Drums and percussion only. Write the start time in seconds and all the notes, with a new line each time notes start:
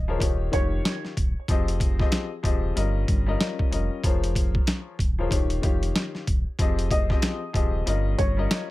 0.20 kick, closed hi-hat
0.53 kick, closed hi-hat
0.85 snare, closed hi-hat
1.05 snare
1.17 kick, closed hi-hat
1.48 kick, closed hi-hat
1.68 closed hi-hat
1.80 kick, closed hi-hat
2.00 kick, snare
2.12 snare, closed hi-hat
2.44 kick, closed hi-hat
2.77 closed hi-hat
3.08 kick, closed hi-hat
3.41 snare, closed hi-hat
3.59 kick
3.73 closed hi-hat
4.04 kick, closed hi-hat
4.24 closed hi-hat
4.35 kick, closed hi-hat
4.55 kick
4.67 snare, closed hi-hat
4.99 kick, closed hi-hat
5.31 kick, closed hi-hat
5.50 closed hi-hat
5.63 kick, closed hi-hat
5.83 closed hi-hat
5.96 snare, closed hi-hat
6.15 snare
6.27 kick, closed hi-hat
6.59 kick, closed hi-hat
6.79 closed hi-hat
6.91 kick, closed hi-hat
7.10 kick, snare
7.22 finger snap, snare, closed hi-hat
7.54 kick, closed hi-hat
7.87 closed hi-hat
8.19 kick, closed hi-hat
8.51 finger snap, snare, closed hi-hat